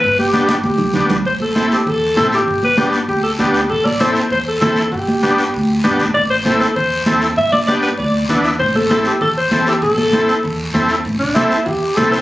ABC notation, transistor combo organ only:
X:1
M:4/4
L:1/8
Q:1/4=196
K:Am
V:1 name="Transistor combo organ"
z2 [B,DG] z3 [B,DG] z | z2 [CEA] z3 [CEA] z | z2 [B,DG] z3 [B,DG] z | z2 [CEA] z3 [CEA] z |
z2 [B,DG] z3 [B,DG] z | z2 [CEA] z3 [CEA] z | z2 [B,DG] z3 [B,DE] z | z2 [CEA] z3 [CEA] z |
z2 [CEA] z3 [CEA] z | z2 [CEA] z3 [CEA] z |]